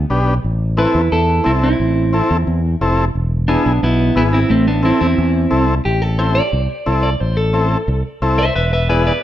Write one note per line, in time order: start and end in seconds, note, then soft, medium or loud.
0.10 0.38 B1 loud
0.10 0.34 B3 medium
0.10 0.34 D4 medium
0.10 0.35 G4 medium
0.44 0.85 A1 loud
0.77 1.01 C4 medium
0.77 1.02 E4 medium
0.77 1.10 E4 medium
0.77 1.02 A4 medium
0.77 1.10 B4 loud
0.95 1.09 E2 loud
1.12 1.39 E2 loud
1.12 1.44 E4 medium
1.12 1.47 A4 loud
1.44 1.73 C2 loud
1.44 1.69 C4 medium
1.44 1.51 C4 medium
1.44 1.69 E4 medium
1.44 1.51 E4 medium
1.44 1.69 A4 medium
1.63 2.61 C4 medium
1.63 2.61 E4 medium
1.80 2.20 A1 loud
2.13 2.37 C4 loud
2.13 2.37 E4 medium
2.13 2.38 A4 medium
2.31 2.44 E2 loud
2.47 2.74 E2 loud
2.81 3.08 F1 loud
2.81 3.05 C4 medium
2.81 3.05 E4 medium
2.81 3.05 A4 medium
3.15 3.56 E1 medium
3.48 3.72 B3 medium
3.48 3.80 B3 medium
3.48 3.80 D4 loud
3.48 3.72 E4 medium
3.48 3.73 G#4 medium
3.66 3.79 B1 loud
3.83 4.10 B1 loud
3.83 4.14 B3 medium
3.83 4.14 E4 medium
4.15 4.43 G#1 loud
4.15 4.40 B3 medium
4.15 4.22 B3 medium
4.15 4.40 E4 medium
4.15 4.22 E4 loud
4.15 4.40 G#4 medium
4.33 4.49 C4 medium
4.33 4.50 E4 medium
4.50 4.91 A1 loud
4.50 4.66 A3 medium
4.50 4.66 C4 medium
4.67 4.83 B3 medium
4.67 4.83 D4 loud
4.83 5.07 C4 medium
4.83 4.99 C4 medium
4.83 5.07 E4 medium
4.83 5.00 E4 loud
4.83 5.07 A4 medium
5.01 5.15 E2 loud
5.01 5.64 C4 medium
5.01 5.65 E4 loud
5.18 5.45 E2 loud
5.50 5.79 C2 loud
5.50 5.75 C4 medium
5.50 5.75 E4 medium
5.50 5.75 A4 medium
5.85 6.40 A1 loud
5.85 6.02 G4 medium
6.02 6.19 A4 medium
6.18 6.42 C4 medium
6.18 6.43 E4 medium
6.18 6.43 A4 medium
6.18 6.35 C5 medium
6.35 7.01 D5 loud
6.53 6.66 C2 loud
6.86 7.14 C2 medium
6.86 7.10 C4 medium
6.86 7.10 E4 medium
6.86 7.10 A4 medium
7.03 7.20 D5 medium
7.20 7.75 A1 loud
7.20 7.37 C5 medium
7.37 8.03 A4 medium
7.53 7.77 C4 medium
7.53 7.78 E4 medium
7.53 7.78 A4 medium
7.88 8.01 C2 loud
8.22 8.49 C2 loud
8.22 8.45 C4 medium
8.22 8.46 E4 medium
8.22 8.46 A4 medium
8.38 8.55 C5 medium
8.38 8.55 E5 loud
8.56 9.10 E1 loud
8.56 8.71 B4 medium
8.56 8.72 E5 medium
8.73 8.88 B4 medium
8.73 8.89 E5 medium
8.89 9.13 B3 medium
8.89 9.13 E4 medium
8.89 9.13 G#4 medium
8.89 9.05 B4 medium
8.89 9.06 D5 medium
9.07 9.21 B4 medium
9.07 9.22 D5 medium